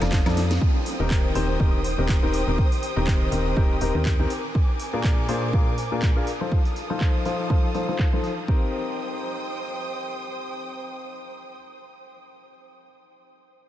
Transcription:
Already playing: violin section A4 F5 D#6
0.01 fm bass F1, grand piano F3 D#4 F4 A4 D5, snare, closed hi-hat, tambourine, high woodblock
0.12 kick, snare, clap, closed hi-hat, tambourine
0.26 fm bass F2, grand piano F3 D#4 F4 A4 D5, snare, closed hi-hat, tambourine, high woodblock
0.37 snare, open hi-hat
0.51 snare, closed hi-hat, tambourine
0.62 violin section C5 G5 D#6, kick
0.86 open hi-hat
1.00 fm bass D#1, grand piano D#3 C4 D#4 G4 A#4
1.11 kick, clap
1.35 fm bass D#1, grand piano D#3 C4 D#4 G4 C5, open hi-hat
1.60 fm bass D#1, grand piano D#3 C4 D#4 G4 A#4, kick
1.84 open hi-hat
1.98 fm bass D#1, grand piano D#3 C4 D#4 G4 A#4
2.09 kick, clap, open hi-hat
2.23 fm bass D#1, grand piano D#3 C4 D#4 G4 A#4
2.34 open hi-hat
2.47 fm bass D#1, grand piano D#3 C4 D#4 G4 A#4
2.58 kick
2.72 open hi-hat
2.83 open hi-hat
2.96 fm bass D#1, grand piano D#3 C4 D#4 G4 A#4
3.07 kick, clap
3.32 fm bass D#1, grand piano D#3 C4 D#4 G4 A#4, open hi-hat
3.57 fm bass D#1, grand piano D#3 C4 D#4 G4 A#4, kick
3.81 fm bass D#1, grand piano D#3 C4 D#4 G4 A#4, open hi-hat
3.95 fm bass D#2, grand piano D#3 C4 D#4 G4 A#4
4.06 kick, clap
4.19 fm bass D#2, grand piano C4 D#4 G4 A#4
4.30 violin section A#4 G#5 D6, open hi-hat
4.55 kick
4.80 open hi-hat
4.93 grand piano A#2 D4 F4 G#4 A#4
5.04 kick, clap
5.29 grand piano A#2 D4 F4 G#4 C5, open hi-hat
5.53 grand piano A#2 D4 F4 G#4 A#4, kick
5.78 open hi-hat
5.92 grand piano A#2 D4 F4 G#4 A#4
6.02 kick, clap, open hi-hat
6.16 grand piano D4 F4 G#4 A#4
6.27 violin section A4 F5 D#6, open hi-hat
6.41 grand piano F3 D#4 F4 A4 C5
6.52 kick
6.65 open hi-hat
6.76 open hi-hat
6.90 grand piano F3 D#4 F4 A4 C5
7.01 kick, clap
7.25 grand piano F3 D#4 F4 A4 C5, open hi-hat
7.50 grand piano F3 D#4 F4 A4 C5, kick
7.75 grand piano F3 D#4 F4 A4 C5, open hi-hat
7.88 grand piano F3 D#4 F4 A4 C5
7.99 kick, clap
8.13 grand piano F3 D#4 F4 A4 C5
8.24 open hi-hat
8.48 grand piano C4 D#4 G4 A#4, violin section C5 G5 D#6, kick

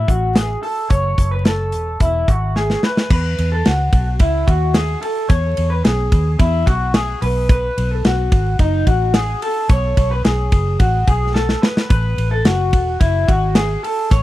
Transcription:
0.08 fingered electric bass A1, clean electric guitar F#4, kick, closed hi-hat
0.35 clean electric guitar G#4, snare, closed hi-hat
0.63 clean electric guitar A4, open hi-hat
0.90 fingered electric bass F#1, clean electric guitar C#5, kick, closed hi-hat
1.18 fingered electric bass F#1, kick, closed hi-hat
1.31 clean electric guitar B4
1.45 clean electric guitar A4, snare, closed hi-hat
1.72 fingered electric bass E1, closed hi-hat
2.00 fingered electric bass E1, clean electric guitar E4, kick, closed hi-hat
2.28 fingered electric bass G#1, clean electric guitar F#4, kick, closed hi-hat
2.56 clean electric guitar G#4, snare
2.70 snare
2.83 clean electric guitar B4, snare
2.97 snare
3.11 fingered electric bass E2, clean electric guitar B4, kick, crash
3.39 fingered electric bass E2, ride
3.52 clean electric guitar A4
3.65 fingered electric bass C#2, clean electric guitar F#4, snare, ride
3.93 fingered electric bass B1, kick, ride
4.19 fingered electric bass C#2, clean electric guitar E4, kick, ride
4.47 fingered electric bass D#2, clean electric guitar F#4, kick, ride
4.74 clean electric guitar G#4, snare, ride
5.02 clean electric guitar A4, open hi-hat, ride
5.29 fingered electric bass E2, clean electric guitar C#5, kick, hi-hat pedal, ride
5.57 fingered electric bass E2, ride
5.70 clean electric guitar B4
5.84 fingered electric bass B1, clean electric guitar G#4, snare, ride
6.12 fingered electric bass D#2, kick, ride
6.39 fingered electric bass E2, clean electric guitar E4, kick, ride
6.66 fingered electric bass B1, clean electric guitar F#4, kick, ride
6.94 clean electric guitar G#4, snare, ride
7.22 fingered electric bass B1, clean electric guitar B4, open hi-hat, ride
7.49 clean electric guitar B4, kick, hi-hat pedal, ride
7.77 fingered electric bass B1, ride
7.91 clean electric guitar A4
8.05 fingered electric bass B1, clean electric guitar F#4, snare, ride
8.32 fingered electric bass G#1, kick, ride
8.59 fingered electric bass F#1, clean electric guitar D#4, kick, ride
8.87 fingered electric bass A1, clean electric guitar F#4, kick, ride
9.14 clean electric guitar G#4, snare, ride
9.42 clean electric guitar A4, open hi-hat, ride
9.69 fingered electric bass B1, clean electric guitar C#5, kick, hi-hat pedal, ride
9.97 fingered electric bass B1, kick, ride
10.11 clean electric guitar B4
10.25 fingered electric bass B1, clean electric guitar G#4, snare, ride
10.52 fingered electric bass F#1, kick, ride
10.80 fingered electric bass A1, clean electric guitar F#4, kick, ride
11.07 fingered electric bass B1, clean electric guitar G#4, kick, ride
11.34 clean electric guitar A4, snare
11.49 snare
11.62 clean electric guitar B4, snare
11.77 snare
11.90 fingered electric bass A1, clean electric guitar B4, kick, hi-hat pedal, ride
12.17 fingered electric bass A1, ride
12.31 clean electric guitar A4
12.44 fingered electric bass F#1, clean electric guitar F#4, snare, ride
12.73 fingered electric bass E1, kick, ride
13.00 fingered electric bass F#1, clean electric guitar E4, kick, ride
13.28 fingered electric bass G#1, clean electric guitar F#4, kick, ride
13.55 clean electric guitar G#4, snare, ride
13.83 clean electric guitar A4, open hi-hat, ride
14.11 fingered electric bass A1, clean electric guitar C#5, kick, hi-hat pedal, ride

